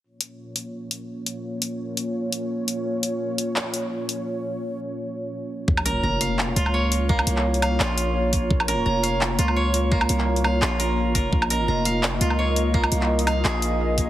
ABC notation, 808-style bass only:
X:1
M:4/4
L:1/8
Q:"Swing 16ths" 1/4=170
K:Bbm
V:1 name="808-style bass" clef=bass
z8 | z8 | z8 | z8 |
B,,,2 F,,,3 D,,3- | D,, C,,3 B,,,4 | B,,,2 F,,,3 D,,3- | D,, C,,3 B,,,4 |
B,,,2 F,,,3 D,,3- | D,, C,,3 B,,,4 |]